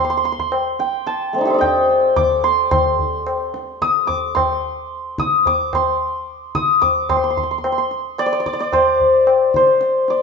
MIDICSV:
0, 0, Header, 1, 3, 480
1, 0, Start_track
1, 0, Tempo, 549954
1, 456, Time_signature, 4, 2, 24, 8
1, 4294, Tempo, 543971
1, 8974, End_track
2, 0, Start_track
2, 0, Title_t, "Santur"
2, 0, Program_c, 0, 15
2, 0, Note_on_c, 0, 86, 101
2, 39, Note_on_c, 0, 84, 59
2, 83, Note_off_c, 0, 84, 0
2, 87, Note_on_c, 0, 84, 67
2, 147, Note_off_c, 0, 84, 0
2, 151, Note_on_c, 0, 84, 60
2, 215, Note_off_c, 0, 84, 0
2, 219, Note_on_c, 0, 84, 69
2, 277, Note_off_c, 0, 84, 0
2, 281, Note_on_c, 0, 84, 60
2, 342, Note_off_c, 0, 84, 0
2, 345, Note_on_c, 0, 84, 66
2, 696, Note_on_c, 0, 79, 65
2, 911, Note_off_c, 0, 86, 0
2, 933, Note_on_c, 0, 81, 75
2, 1161, Note_on_c, 0, 57, 35
2, 1176, Note_on_c, 0, 60, 42
2, 1206, Note_on_c, 0, 62, 44
2, 1230, Note_on_c, 0, 63, 49
2, 1269, Note_on_c, 0, 67, 50
2, 1282, Note_on_c, 0, 69, 55
2, 1310, Note_on_c, 0, 72, 54
2, 1322, Note_off_c, 0, 57, 0
2, 1346, Note_on_c, 0, 74, 55
2, 1383, Note_on_c, 0, 75, 63
2, 1399, Note_off_c, 0, 63, 0
2, 1400, Note_off_c, 0, 79, 0
2, 1404, Note_on_c, 0, 79, 85
2, 1435, Note_off_c, 0, 62, 0
2, 1865, Note_off_c, 0, 84, 0
2, 1888, Note_on_c, 0, 86, 94
2, 1941, Note_off_c, 0, 75, 0
2, 2128, Note_on_c, 0, 84, 89
2, 2364, Note_off_c, 0, 84, 0
2, 2367, Note_on_c, 0, 84, 85
2, 2629, Note_off_c, 0, 81, 0
2, 3210, Note_off_c, 0, 79, 0
2, 3304, Note_off_c, 0, 86, 0
2, 3333, Note_on_c, 0, 87, 102
2, 3385, Note_off_c, 0, 74, 0
2, 3554, Note_on_c, 0, 86, 82
2, 3606, Note_off_c, 0, 87, 0
2, 3613, Note_off_c, 0, 72, 0
2, 3791, Note_off_c, 0, 84, 0
2, 3794, Note_on_c, 0, 84, 68
2, 3852, Note_off_c, 0, 69, 0
2, 4006, Note_off_c, 0, 67, 0
2, 4536, Note_on_c, 0, 87, 86
2, 4589, Note_off_c, 0, 86, 0
2, 4671, Note_off_c, 0, 60, 0
2, 4779, Note_on_c, 0, 86, 84
2, 4831, Note_off_c, 0, 87, 0
2, 5022, Note_off_c, 0, 84, 0
2, 5025, Note_on_c, 0, 84, 69
2, 5732, Note_on_c, 0, 87, 86
2, 5785, Note_off_c, 0, 86, 0
2, 5968, Note_on_c, 0, 86, 81
2, 6021, Note_off_c, 0, 87, 0
2, 6212, Note_off_c, 0, 84, 0
2, 6215, Note_on_c, 0, 84, 75
2, 6273, Note_off_c, 0, 84, 0
2, 6277, Note_on_c, 0, 84, 47
2, 6335, Note_off_c, 0, 84, 0
2, 6338, Note_on_c, 0, 84, 53
2, 6394, Note_off_c, 0, 84, 0
2, 6398, Note_on_c, 0, 84, 45
2, 6455, Note_off_c, 0, 84, 0
2, 6459, Note_on_c, 0, 84, 51
2, 6509, Note_off_c, 0, 84, 0
2, 6512, Note_on_c, 0, 84, 41
2, 6576, Note_off_c, 0, 84, 0
2, 6580, Note_on_c, 0, 84, 49
2, 6639, Note_off_c, 0, 84, 0
2, 6642, Note_on_c, 0, 84, 44
2, 6697, Note_off_c, 0, 84, 0
2, 6700, Note_on_c, 0, 84, 47
2, 6762, Note_off_c, 0, 84, 0
2, 6766, Note_on_c, 0, 84, 46
2, 6813, Note_off_c, 0, 84, 0
2, 6816, Note_on_c, 0, 84, 56
2, 7180, Note_on_c, 0, 74, 94
2, 7239, Note_off_c, 0, 74, 0
2, 7243, Note_on_c, 0, 74, 71
2, 7296, Note_off_c, 0, 74, 0
2, 7300, Note_on_c, 0, 74, 74
2, 7361, Note_off_c, 0, 74, 0
2, 7364, Note_on_c, 0, 74, 63
2, 7399, Note_off_c, 0, 86, 0
2, 7415, Note_off_c, 0, 74, 0
2, 7419, Note_on_c, 0, 74, 75
2, 7479, Note_off_c, 0, 74, 0
2, 7483, Note_on_c, 0, 74, 67
2, 7541, Note_off_c, 0, 74, 0
2, 7545, Note_on_c, 0, 74, 78
2, 7658, Note_on_c, 0, 72, 80
2, 8353, Note_off_c, 0, 84, 0
2, 8387, Note_off_c, 0, 72, 0
2, 8391, Note_on_c, 0, 72, 73
2, 8863, Note_off_c, 0, 74, 0
2, 8866, Note_on_c, 0, 74, 75
2, 8974, Note_off_c, 0, 72, 0
2, 8974, Note_off_c, 0, 74, 0
2, 8974, End_track
3, 0, Start_track
3, 0, Title_t, "Tabla"
3, 213, Note_on_c, 9, 62, 59
3, 300, Note_off_c, 9, 62, 0
3, 336, Note_on_c, 9, 64, 47
3, 423, Note_off_c, 9, 64, 0
3, 453, Note_on_c, 9, 60, 83
3, 540, Note_off_c, 9, 60, 0
3, 693, Note_on_c, 9, 62, 63
3, 780, Note_off_c, 9, 62, 0
3, 930, Note_on_c, 9, 62, 73
3, 1018, Note_off_c, 9, 62, 0
3, 1173, Note_on_c, 9, 62, 58
3, 1260, Note_off_c, 9, 62, 0
3, 1413, Note_on_c, 9, 60, 73
3, 1413, Note_on_c, 9, 64, 64
3, 1500, Note_off_c, 9, 60, 0
3, 1500, Note_off_c, 9, 64, 0
3, 1651, Note_on_c, 9, 62, 56
3, 1739, Note_off_c, 9, 62, 0
3, 1889, Note_on_c, 9, 60, 76
3, 1889, Note_on_c, 9, 64, 66
3, 1977, Note_off_c, 9, 60, 0
3, 1977, Note_off_c, 9, 64, 0
3, 2131, Note_on_c, 9, 62, 58
3, 2219, Note_off_c, 9, 62, 0
3, 2369, Note_on_c, 9, 60, 101
3, 2369, Note_on_c, 9, 64, 88
3, 2456, Note_off_c, 9, 60, 0
3, 2456, Note_off_c, 9, 64, 0
3, 2609, Note_on_c, 9, 64, 74
3, 2697, Note_off_c, 9, 64, 0
3, 2850, Note_on_c, 9, 60, 80
3, 2938, Note_off_c, 9, 60, 0
3, 3090, Note_on_c, 9, 62, 63
3, 3177, Note_off_c, 9, 62, 0
3, 3331, Note_on_c, 9, 37, 70
3, 3419, Note_off_c, 9, 37, 0
3, 3567, Note_on_c, 9, 63, 67
3, 3567, Note_on_c, 9, 64, 60
3, 3654, Note_off_c, 9, 63, 0
3, 3654, Note_off_c, 9, 64, 0
3, 3810, Note_on_c, 9, 60, 85
3, 3810, Note_on_c, 9, 64, 82
3, 3897, Note_off_c, 9, 60, 0
3, 3897, Note_off_c, 9, 64, 0
3, 4527, Note_on_c, 9, 37, 74
3, 4615, Note_off_c, 9, 37, 0
3, 4768, Note_on_c, 9, 63, 73
3, 4768, Note_on_c, 9, 64, 67
3, 4857, Note_off_c, 9, 63, 0
3, 4857, Note_off_c, 9, 64, 0
3, 5009, Note_on_c, 9, 60, 89
3, 5009, Note_on_c, 9, 64, 85
3, 5097, Note_off_c, 9, 60, 0
3, 5097, Note_off_c, 9, 64, 0
3, 5732, Note_on_c, 9, 37, 72
3, 5820, Note_off_c, 9, 37, 0
3, 5974, Note_on_c, 9, 63, 73
3, 5974, Note_on_c, 9, 64, 61
3, 6062, Note_off_c, 9, 63, 0
3, 6062, Note_off_c, 9, 64, 0
3, 6213, Note_on_c, 9, 60, 97
3, 6213, Note_on_c, 9, 64, 85
3, 6301, Note_off_c, 9, 60, 0
3, 6301, Note_off_c, 9, 64, 0
3, 6456, Note_on_c, 9, 64, 71
3, 6544, Note_off_c, 9, 64, 0
3, 6696, Note_on_c, 9, 60, 78
3, 6784, Note_off_c, 9, 60, 0
3, 6933, Note_on_c, 9, 62, 59
3, 7022, Note_off_c, 9, 62, 0
3, 7174, Note_on_c, 9, 60, 68
3, 7262, Note_off_c, 9, 60, 0
3, 7418, Note_on_c, 9, 37, 52
3, 7507, Note_off_c, 9, 37, 0
3, 7536, Note_on_c, 9, 62, 55
3, 7625, Note_off_c, 9, 62, 0
3, 7652, Note_on_c, 9, 60, 73
3, 7652, Note_on_c, 9, 64, 66
3, 7740, Note_off_c, 9, 60, 0
3, 7740, Note_off_c, 9, 64, 0
3, 7895, Note_on_c, 9, 64, 54
3, 7983, Note_off_c, 9, 64, 0
3, 8133, Note_on_c, 9, 60, 77
3, 8221, Note_off_c, 9, 60, 0
3, 8373, Note_on_c, 9, 37, 59
3, 8462, Note_off_c, 9, 37, 0
3, 8485, Note_on_c, 9, 62, 51
3, 8574, Note_off_c, 9, 62, 0
3, 8608, Note_on_c, 9, 62, 75
3, 8696, Note_off_c, 9, 62, 0
3, 8849, Note_on_c, 9, 62, 54
3, 8937, Note_off_c, 9, 62, 0
3, 8974, End_track
0, 0, End_of_file